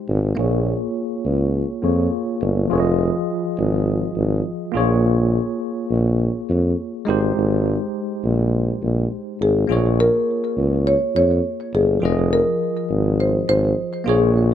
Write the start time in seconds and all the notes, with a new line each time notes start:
0.08 G#1
0.35 A#1 A#3 F4 G#4
0.40 C#5
1.25 C#2
1.82 F2 A#3 F4 G#4 C#5
2.41 G1
2.68 F1 F3 F4 G#4
2.73 C#5
2.80 D#5
3.58 G#1
4.16 G#1
4.72 A#1 A#3 F4 G#4
4.77 C#5
5.91 A#1
6.49 F2
7.05 G#1 G#3 D#4 G4
7.10 C5
7.37 G#1
8.24 A#1
8.82 A#1
9.41 G#1 G#4
9.67 A#1 A#3 F4 G#4
9.72 C#5
10.00 A#4
10.57 C#2
10.87 C#5
11.15 F2 C#5
11.74 G1 G#4
12.00 F1 F3 F4 G#4
12.05 D#5
12.33 A#4
12.90 G#1
13.20 C5
13.48 G#1 C5
14.04 A#1 A#3 F4 G#4
14.09 C#5